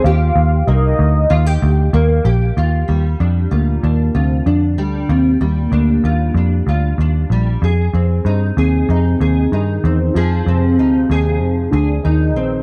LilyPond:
<<
  \new Staff \with { instrumentName = "Nylon-string guitar" } { \time 4/4 \key ees \major \tempo 4 = 95 g'4 bes4 f'16 g'8. bes8 g'8 | f'8 g8 d'8 f'8 d'8 f'8 d'8 g8 | f'8 g8 d'8 f'8 d'8 f'8 d'8 g8 | aes'8 c'8 ees'8 aes'8 ees'8 aes'8 ees'8 c'8 |
<f aes'>8 c'8 ees'8 aes'4 aes'8 ees'8 c'8 | }
  \new Staff \with { instrumentName = "Soft synth lead" } { \time 4/4 \key ees \major f''4 ees''2 r4 | r4. bes4 c'8 d'4 | c'8 bes2. r8 | r4. c'4. ees'4 |
f'8 c'2 d'8 ees'4 | }
  \new Staff \with { instrumentName = "Picked electric bass" } { \clef bass \time 4/4 \key ees \major ees,8 ees,8 c,8 d,8 ees,8 d,8 ees,8 bes,,8 | ees,8 ees,8 f,8 d,8 ees,8 d,8 f,8 d,8 | ees,8 ees,8 d,8 ees,8 f,8 d,8 ees,8 bes,,8 | f,8 f,8 g,8 ees,8 f,8 ees,8 g,8 fes,8 |
f,8 f,8 d,8 ees,8 f,8 d,8 ees,8 bes,,8 | }
>>